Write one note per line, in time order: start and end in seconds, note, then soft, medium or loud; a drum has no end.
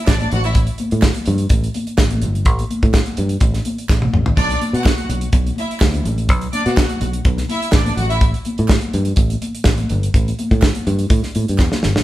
0.07 0.25 A1 loud
0.07 0.17 D4 loud
0.07 0.17 D5 loud
0.07 kick loud
0.07 snare loud
0.07 clap loud
0.20 0.29 D4 medium
0.20 0.29 D5 loud
0.20 closed hi-hat soft
0.20 muted conga soft
0.20 high conga medium
0.31 0.67 A1 loud
0.31 0.42 F#4 medium
0.31 0.41 F#5 loud
0.31 closed hi-hat medium
0.31 low conga medium
0.44 0.53 E4 medium
0.44 0.53 E5 medium
0.44 closed hi-hat soft
0.55 kick loud
0.55 closed hi-hat medium
0.55 muted conga soft
0.67 closed hi-hat medium
0.78 closed hi-hat medium
0.78 high conga medium
0.91 1.09 A2 loud
0.91 closed hi-hat soft
1.02 kick loud
1.02 snare loud
1.02 clap loud
1.14 closed hi-hat medium
1.14 high conga medium
1.25 1.45 G2 loud
1.25 closed hi-hat medium
1.25 low conga medium
1.38 closed hi-hat medium
1.49 1.68 A1 loud
1.49 kick loud
1.49 closed hi-hat medium
1.49 muted conga soft
1.64 closed hi-hat medium
1.74 closed hi-hat medium
1.74 high conga medium
1.87 closed hi-hat medium
1.98 2.24 A1 loud
1.98 kick loud
1.98 snare loud
1.98 clap loud
2.10 closed hi-hat medium
2.10 muted conga soft
2.10 high conga medium
2.22 2.46 G1 medium
2.22 closed hi-hat medium
2.22 low conga medium
2.35 closed hi-hat soft
2.45 2.63 A1 loud
2.45 kick loud
2.45 closed hi-hat medium
2.59 closed hi-hat soft
2.59 muted conga soft
2.70 closed hi-hat medium
2.70 high conga loud
2.83 3.00 A2 loud
2.83 kick medium
2.83 closed hi-hat soft
2.94 kick loud
2.94 snare loud
2.94 clap medium
3.06 closed hi-hat medium
3.06 muted conga soft
3.06 high conga medium
3.17 3.35 G2 medium
3.17 closed hi-hat medium
3.17 low conga medium
3.29 closed hi-hat medium
3.40 3.59 A1 loud
3.40 kick loud
3.40 closed hi-hat medium
3.40 muted conga soft
3.54 snare soft
3.54 closed hi-hat medium
3.54 muted conga soft
3.65 closed hi-hat medium
3.65 high conga medium
3.78 closed hi-hat soft
3.89 4.07 A1 loud
3.89 kick loud
3.89 snare medium
3.89 clap loud
4.02 high tom medium
4.02 high conga medium
4.13 4.31 A1 medium
4.13 mid tom loud
4.13 low conga medium
4.26 floor tom loud
4.37 4.55 B1 loud
4.37 4.56 D4 loud
4.37 4.56 D5 loud
4.37 kick loud
4.37 splash medium
4.50 closed hi-hat medium
4.50 muted conga soft
4.61 closed hi-hat medium
4.61 high conga loud
4.73 4.91 B2 medium
4.73 5.07 F#4 medium
4.73 5.07 F#5 medium
4.73 closed hi-hat soft
4.84 kick loud
4.84 snare loud
4.84 clap loud
4.84 muted conga soft
4.97 closed hi-hat soft
4.97 muted conga soft
4.97 high conga medium
5.09 5.27 B1 medium
5.09 closed hi-hat medium
5.09 low conga medium
5.21 closed hi-hat medium
5.33 5.51 B1 medium
5.33 kick loud
5.33 closed hi-hat medium
5.33 muted conga soft
5.46 closed hi-hat soft
5.46 muted conga soft
5.56 5.77 E4 medium
5.56 5.77 E5 medium
5.56 closed hi-hat medium
5.56 high conga medium
5.71 closed hi-hat soft
5.80 5.99 D2 loud
5.80 kick loud
5.80 snare loud
5.80 clap loud
5.93 closed hi-hat soft
5.93 muted conga soft
5.93 high conga medium
6.04 6.29 A1 medium
6.04 closed hi-hat medium
6.04 low conga medium
6.18 closed hi-hat soft
6.28 6.47 B1 loud
6.28 kick loud
6.28 closed hi-hat medium
6.28 muted conga soft
6.41 closed hi-hat soft
6.53 6.63 D4 medium
6.53 6.63 D5 loud
6.53 closed hi-hat medium
6.53 high conga medium
6.66 6.83 B2 medium
6.66 6.99 F#4 medium
6.66 6.99 F#5 medium
6.66 closed hi-hat soft
6.77 kick loud
6.77 snare loud
6.77 clap loud
6.89 closed hi-hat medium
6.89 muted conga soft
6.89 high conga medium
7.00 7.19 B1 medium
7.00 closed hi-hat medium
7.00 low conga medium
7.13 closed hi-hat medium
7.25 7.43 B1 loud
7.25 kick loud
7.25 closed hi-hat medium
7.25 muted conga soft
7.38 snare soft
7.38 closed hi-hat medium
7.38 muted conga soft
7.49 7.68 E4 medium
7.49 7.69 E5 loud
7.49 closed hi-hat medium
7.49 high conga medium
7.62 closed hi-hat soft
7.72 7.91 A1 medium
7.72 7.84 D4 medium
7.72 7.84 D5 loud
7.72 kick loud
7.72 snare loud
7.72 clap medium
7.85 7.96 D4 medium
7.85 7.95 D5 medium
7.85 closed hi-hat medium
7.85 high conga medium
7.97 8.32 A1 loud
7.97 8.07 F#4 medium
7.97 8.07 F#5 medium
7.97 closed hi-hat medium
7.97 low conga medium
8.10 8.19 E4 medium
8.10 8.19 E5 loud
8.10 closed hi-hat soft
8.21 kick loud
8.21 closed hi-hat medium
8.21 muted conga soft
8.34 closed hi-hat medium
8.45 closed hi-hat medium
8.45 high conga loud
8.58 8.76 A2 medium
8.58 closed hi-hat soft
8.68 kick loud
8.68 snare loud
8.68 clap loud
8.81 closed hi-hat soft
8.81 muted conga soft
8.81 high conga medium
8.93 9.11 G2 medium
8.93 closed hi-hat medium
8.93 low conga medium
9.05 closed hi-hat medium
9.16 9.35 A1 loud
9.16 kick loud
9.16 closed hi-hat medium
9.30 closed hi-hat medium
9.30 muted conga soft
9.42 closed hi-hat medium
9.42 high conga medium
9.55 closed hi-hat soft
9.64 9.83 A1 medium
9.64 kick loud
9.64 snare loud
9.64 clap medium
9.78 closed hi-hat soft
9.78 muted conga soft
9.78 high conga medium
9.89 10.08 G1 medium
9.89 closed hi-hat medium
9.89 low conga medium
10.03 closed hi-hat soft
10.14 10.32 A1 loud
10.14 kick loud
10.14 closed hi-hat medium
10.27 closed hi-hat soft
10.27 muted conga soft
10.39 closed hi-hat medium
10.39 high conga medium
10.51 10.69 A2 loud
10.51 kick medium
10.51 closed hi-hat soft
10.62 kick loud
10.62 snare loud
10.62 clap loud
10.75 closed hi-hat medium
10.75 high conga medium
10.87 11.04 G2 loud
10.87 closed hi-hat medium
10.87 low conga medium
10.99 closed hi-hat soft
11.10 11.20 A2 loud
11.10 kick loud
11.10 closed hi-hat medium
11.23 snare soft
11.23 closed hi-hat medium
11.23 muted conga soft
11.35 11.45 A2 medium
11.35 closed hi-hat medium
11.35 high conga medium
11.48 11.57 G2 medium
11.48 closed hi-hat medium
11.58 11.68 E2 loud
11.58 kick loud
11.58 snare medium
11.58 clap loud
11.72 snare medium
11.72 muted conga soft
11.72 high conga medium
11.83 11.93 G1 loud
11.83 snare medium
11.83 low conga medium
11.96 12.04 A1 medium
11.96 snare loud